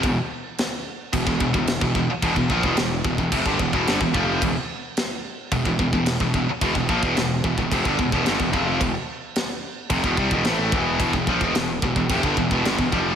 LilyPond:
<<
  \new Staff \with { instrumentName = "Distorted electric guitar" } { \clef bass \time 4/4 \key c \lydian \tempo 4 = 109 <e, b,>16 r4. r16 <e, b,>16 <e, b,>16 <e, b,>16 <e, b,>8 <e, b,>16 <e, b,>16 r16 | <e, b,>16 <e, b,>16 <ais, f>16 <e, b,>16 <e, b,>8 <e, b,>16 <e, b,>16 <f, c>16 <g, d>16 <e, b,>16 <e, b,>16 <g, d>16 <e, b,>16 <f, c f>8 | <e, b,>16 r4. r16 <e, b,>16 <e, b,>16 <e, b,>16 <e, b,>8 <e, b,>16 <e, b,>16 r16 | <e, b,>16 <e, b,>16 <ais, f>16 <e, b,>16 <e, b,>8 <e, b,>16 <e, b,>16 <f, c>16 <g, d>16 <e, b,>16 <e, b,>16 <g, d>16 <e, b,>16 <f, c f>8 |
<e, b,>16 r4. r16 <f, c>16 <e, b,>16 <c g>16 <e, b,>16 <a, e a>8 <e, b, e>8 | <e, b,>16 <e, b,>16 <ais, f>16 <e, b,>16 <e, b,>8 <e, b,>16 <e, b,>16 <f, c>16 <g, d>16 <e, b,>16 <e, b,>16 <g, d>16 <e, b,>16 <f, c f>8 | }
  \new Staff \with { instrumentName = "Picked electric bass" } { \clef bass \time 4/4 \key c \lydian e,,16 r4. r16 e,,16 e,,16 e,,16 e,,8 e,,16 e,,16 r16 | e,,16 e,,16 ais,,16 e,,16 e,,8 e,,16 e,,16 f,,16 g,,16 e,,16 e,,16 g,,16 e,,16 f,,8 | e,,16 r4. r16 e,,16 e,,16 e,,16 e,,8 e,,16 e,,16 r16 | e,,16 e,,16 ais,,16 e,,16 e,,8 e,,16 e,,16 f,,16 g,,16 e,,16 e,,16 g,,16 e,,16 f,,8 |
e,,16 r4. r16 f,,16 e,,16 c,16 e,,16 a,,8 e,,8 | e,,16 e,,16 ais,,16 e,,16 e,,8 e,,16 e,,16 f,,16 g,,16 e,,16 e,,16 g,,16 e,,16 f,,8 | }
  \new DrumStaff \with { instrumentName = "Drums" } \drummode { \time 4/4 <cymc bd>4 <cymc sn>4 <cymc bd>16 bd16 bd16 bd16 <cymc sn>16 bd16 bd8 | <cymc bd>16 bd16 bd16 bd16 <cymc sn>8 bd16 bd16 <cymc bd>16 bd16 bd16 bd16 <cymc sn>16 bd16 bd8 | <cymc bd>4 <cymc sn>4 <cymc bd>16 bd16 bd16 bd16 <cymc sn>16 bd16 bd8 | <cymc bd>16 bd16 bd16 bd16 <cymc sn>8 bd16 bd16 <cymc bd>16 bd16 bd16 bd16 <cymc sn>16 bd16 bd8 |
<cymc bd>4 <cymc sn>4 <cymc bd>16 bd16 bd16 bd16 <cymc sn>8 bd8 | <cymc bd>16 bd16 bd16 bd16 <cymc sn>8 bd16 bd16 <cymc bd>16 bd16 bd16 bd16 <cymc sn>16 bd16 bd8 | }
>>